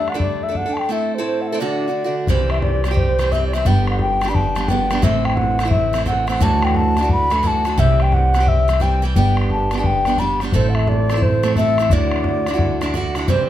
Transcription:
Already playing: G3 A3 D4 A4 E5
0.08 F#5, bodhran
0.14 G3 A3 D4 A4
0.20 D5, bodhran
0.43 E5
0.48 A3 D4 A4
0.55 F#5, bodhran
0.66 A3 D4 A4
0.73 A5, bodhran
0.79 G5
0.89 A3 C4 E4 A4 E5
1.15 A4 C5
1.19 A2 A3 C4 E4
1.26 C5
1.41 F#5
1.48 E5
1.52 A2 A3 C4 E4 A4
1.59 D2 A2 D3 A3 D4 F#4 D5
1.88 D3 A3 D4 F#4
2.04 D3 A3 D4 F#4
2.27 C2 C3 E3 G3 C4 G4 C5, bodhran
2.50 E5, bodhran
2.62 D5, bodhran
2.84 E3 G3 C4 G4, bodhran
2.91 G3 C4 G4
2.96 C5, bodhran
3.19 E3 G3 C4 G4, bodhran
3.32 E3 G3 C4 G4 E5, bodhran
3.47 D5
3.53 E3 G3 C4 G4 E5, bodhran
3.65 G1 G3 B3 D4 G4 G5, bodhran
3.87 F#5, bodhran
3.99 G5, bodhran
4.21 G3 B3 D4 G4, bodhran
4.28 B3 D4 G4 B5
4.35 A5, bodhran
4.55 G3 B3 D4 G4, bodhran
4.63 A5
4.68 G3 B3 D4 G4 G5, bodhran
4.90 G3 B3 D4 G4, bodhran
5.02 A1 A2 E3 A3 C4 E4 E5, bodhran
5.25 G5, bodhran
5.36 F#5, bodhran
5.59 E3 A3 C4 E4, bodhran
5.65 A3 C4 E4
5.71 E5, bodhran
5.93 E3 A3 C4 E4, bodhran
6.06 E3 A3 C4 E4 F#5, bodhran
6.27 E3 A3 C4 E4 F#5, bodhran
6.40 D2 A2 E3 A3 D4 F#4 A5, bodhran
6.62 G5, bodhran
6.74 A5, bodhran
6.97 E3 A3 D4 F#4, bodhran
7.02 E3 A3 D4 F#4
7.09 B5, bodhran
7.30 E3 A3 D4 F#4, bodhran
7.43 E3 A3 D4 F#4, bodhran
7.47 A5
7.65 E3 A3 D4 F#4, bodhran
7.78 C2 C3 E3 G3 C4 G4 E5, bodhran
8.00 G5, bodhran
8.12 F#5, bodhran
8.34 E3 G3 C4 G4, bodhran
8.40 G3 C4 G4
8.47 E5, bodhran
8.68 E3 G3 C4 G4, bodhran
8.80 E3 G3 C4 G4 G5, bodhran
9.02 E3 G3 C4 G4
9.16 G1 G3 B3 D4 G4 G5, bodhran
9.37 bodhran
9.50 A5, bodhran
9.71 G3 B3 D4 G4, bodhran
9.78 B3 D4 G4 A5
9.84 G5, bodhran
10.05 G3 B3 D4 G4, bodhran
10.18 G3 B3 D4 G4 B5, bodhran
10.40 G3 B3 D4 G4, bodhran
10.52 A1 A2 A3 C4 E4 A4 C5, bodhran
10.69 F#5
10.75 E5, bodhran
10.87 D5, bodhran
11.09 A3 C4 E4 A4, bodhran
11.15 C4 E4 A4
11.22 C5, bodhran
11.43 A3 C4 E4 A4, bodhran
11.56 A3 C4 E4 A4 E5, bodhran
11.78 A3 C4 E4 A4, bodhran
11.90 D2 A2 D3 D4 E4 F#4 D5, bodhran
12.12 bodhran
12.24 bodhran
12.46 D3 D4 E4 F#4, bodhran
12.54 D3 D4 E4 F#4
12.59 bodhran
12.81 D3 D4 E4 F#4, bodhran
12.94 D3 D4 E4 F#4, bodhran
13.15 D3 D4 E4 F#4, bodhran
13.28 C3 E3 G3 C4 G4 C5, bodhran

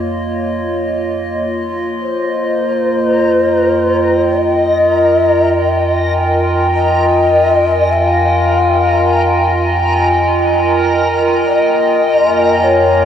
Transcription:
Already playing: F2 A#3 F4 C#5 D#5
2.02 F2 A#4 C5 A#5
3.44 G5
4.38 D#5
5.66 G#5
6.75 D#5
7.93 E5
8.07 F5
11.46 F2 A#3 D#5
12.64 C#5

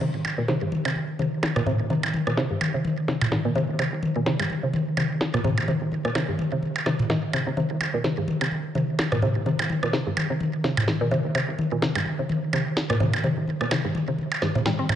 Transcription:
0.01 C3, high tom, crash
0.14 C2
0.25 C2, high tom, percussion blips
0.38 C2 A#2
0.48 C3, snare, high tom
0.62 C2 G2
0.72 high tom
0.85 C2 C3, percussion blips
0.96 high tom
1.19 G1 C3, high tom
1.43 snare, high tom, percussion blips
1.56 A#2, cross-stick, mid tom
1.67 C2 C3, mid tom, high tom
1.80 D#2
1.90 C3, high tom
2.03 C2, percussion blips
2.14 C2, high tom
2.27 C2 A#2, cross-stick
2.37 C3, snare, high tom
2.51 C2 G2
2.61 high tom, percussion blips
2.74 C2 C3
2.85 high tom
3.08 G1 C3, snare, high tom
3.21 mid tom, percussion blips
3.32 snare, high tom
3.45 A#2
3.55 C2 C3, high tom
3.69 D#2
3.79 C3, high tom, percussion blips
3.92 C2
4.03 C2, high tom
4.16 C2 A#2
4.26 C3, snare, high tom
4.40 C2 G2, percussion blips
4.50 high tom
4.63 C2 C3
4.74 high tom
4.97 G1 C3, high tom, percussion blips
5.21 snare, high tom
5.34 A#2, cross-stick, mid tom
5.44 C2 C3, mid tom, high tom
5.58 D#2, percussion blips
5.68 C3, high tom
5.81 C2
5.92 C2, high tom
6.05 C2 A#2, cross-stick
6.15 C3, snare, high tom, percussion blips
6.28 C2 G2
6.39 high tom
6.52 C2 C3
6.63 high tom
6.76 percussion blips
6.86 G1 C3, cross-stick, snare, high tom
6.99 mid tom
7.10 D#3, snare, high tom
7.33 C2 C3, high tom, percussion blips
7.47 D#2 C3
7.57 C3, high tom
7.70 C2
7.81 C2, high tom, percussion blips
7.94 C2 A#2
8.04 C3, snare, high tom
8.18 C2 G2
8.28 high tom
8.41 C2 C3, percussion blips
8.52 high tom
8.75 G1 C3, high tom
8.99 snare, high tom, percussion blips
9.12 A#2, cross-stick, mid tom
9.22 C2 C3, mid tom, high tom
9.36 D#2
9.46 C3, high tom
9.59 C2, percussion blips
9.70 C2, high tom
9.83 C2 A#2, cross-stick
9.93 C3, snare, high tom
10.06 C2 G2
10.17 high tom, percussion blips
10.30 C2 C3
10.40 high tom
10.64 G1 C3, snare, high tom
10.77 mid tom, percussion blips
10.88 snare, high tom
11.01 A#2
11.11 C2 C3, high tom
11.25 D#2
11.35 C3, high tom, percussion blips
11.48 C2
11.59 C2, high tom
11.72 C2 A#2
11.82 C3, snare, high tom
11.95 C2 G2, percussion blips
12.06 high tom
12.19 C2 C3
12.29 high tom
12.53 G1 C3, high tom, percussion blips
12.77 snare, high tom
12.90 A#2, cross-stick, mid tom
13.00 C2 C3, mid tom, high tom
13.13 D#2, percussion blips
13.24 C3, high tom
13.37 C2
13.48 C2, high tom
13.61 C2 A#2, cross-stick
13.71 C3, snare, high tom, percussion blips
13.84 C2 G2
13.95 high tom
14.08 C2 C3
14.18 high tom
14.32 percussion blips
14.42 G1 G2, cross-stick, snare, high tom
14.55 C3, mid tom
14.66 G3, snare, high tom
14.79 A#1 C4
14.89 C3, mid tom, high tom, percussion blips

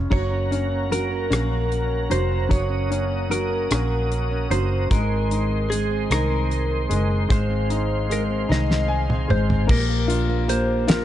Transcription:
Already playing: G#3 C#4 F4
0.10 F#1 F#3 A#3 C#4 A#4 C#5 F#5 A#5, kick, splash
0.31 C#4
0.51 A#3 C#4, closed hi-hat
0.71 C#4
0.90 F#3 A#3 A#4, closed hi-hat
1.11 C#4
1.30 A#1 A#3 C#4, cross-stick, closed hi-hat
1.51 C#4
1.71 A#3, closed hi-hat
1.90 C#4
2.10 F1 F#3 A#3 C5, closed hi-hat
2.31 C#4
2.49 F#1 F#3 A#3 C#5 D#6, kick, closed hi-hat
2.70 C#4
2.90 A#3 C#4, closed hi-hat
3.10 C#4
3.29 F#3 A#3 A#4, closed hi-hat
3.50 C#4
3.71 A#1 A#3 C#4, cross-stick, closed hi-hat
3.90 C#4
4.11 A#3, closed hi-hat
4.31 C#4
4.50 F#1 F#3 A#3 C5, closed hi-hat
4.71 C#4
4.90 G#1 D#3 G#3 G#4 A#4 C5 D#5 C6, kick, closed hi-hat
5.11 C4
5.30 G#3 D#4, closed hi-hat
5.50 C4
5.70 G#3 G#4, closed hi-hat
5.91 C4
6.10 C2 D#3 D#4 A#4, cross-stick, closed hi-hat
6.30 C4
6.50 G#3, closed hi-hat
6.70 C4
6.89 F#1 G#3, closed hi-hat
7.10 C4
7.29 G#1 D#3 G#3 C5 F5, kick, closed hi-hat
7.50 C4
7.69 G#3 D#4, closed hi-hat
7.90 C4
8.10 G#3 A#4, closed hi-hat
8.30 C4
8.48 C2 D#3 D#4 D#5, snare
8.70 C4, snare
8.88 G#3 G#5
9.09 C4, mid tom
9.28 G#1 G#3 C5, mid tom
9.49 C4, floor tom
9.67 A#1 F3 A#3 G4 A#4, kick, crash
9.89 A#3
10.08 D4 F4, closed hi-hat
10.30 A#3
10.48 A#3 G4 C5, closed hi-hat
10.68 D4
10.88 F3 F4 G4 A#4, snare, closed hi-hat

